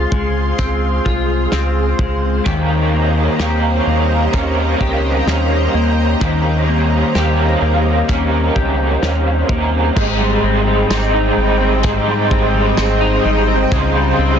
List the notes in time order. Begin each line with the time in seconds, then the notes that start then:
Already playing: G#3 C4 F4 G#4 C5 F5 C6
0.12 C#2 G#3, kick
0.58 C#2 C4, kick, closed hi-hat
1.05 C2 F4, kick
1.52 C#2 C4, snare, closed hi-hat
1.99 C#2 G#3, kick
2.45 D#2 D#3 A#3 C#4 G4 D#5 A#5, kick, closed hi-hat
2.49 A#4
2.93 A#3
3.39 D#2 A#3 C#4 G4, snare, closed hi-hat
3.43 G4 A#4
3.87 D#2 A#3
4.32 D#2 D#3 A#3 C#4, kick, closed hi-hat
4.36 C#4 G4 A#4
4.81 C#2 G4, kick
5.26 D#2 C#4, snare, closed hi-hat
5.74 D#2 A#3
6.20 D#2 D#3 A#3 C#4 G4 A#4, kick, closed hi-hat
6.68 A#3
7.14 D#2 A#3 C#4 G4, snare, closed hi-hat
7.19 A#4
7.62 D#2 A#3
8.08 D#2 D#3 A#3 C#4 G4 A#4, kick, closed hi-hat
8.56 C#2 G4, kick
9.02 D#2 C#4, snare, closed hi-hat
9.48 D#2 A#3 G4 A#4, kick
9.54 C#4
9.95 G#1 G#2 G#3 C4 D#4 G4 C5 D#5 G5, kick, crash
10.20 G3
10.43 G#1 C4
10.67 G3
10.89 G#1 G#3 C4 D#4, snare, closed hi-hat, tambourine
10.94 G4
11.13 D#4
11.37 G#1 G3
11.60 C4
11.81 G#2 G#3 C4, kick, closed hi-hat
11.87 D#4 G4
12.07 G3
12.31 G#1 C4, kick
12.54 G3
12.77 G#1 C4, snare, closed hi-hat, tambourine
13.01 D#4
13.25 G#1 G3
13.48 C4
13.71 C#2 C#3 G3 C4 D#4 F4 G5, kick, closed hi-hat
13.96 G3
14.18 C#2 C4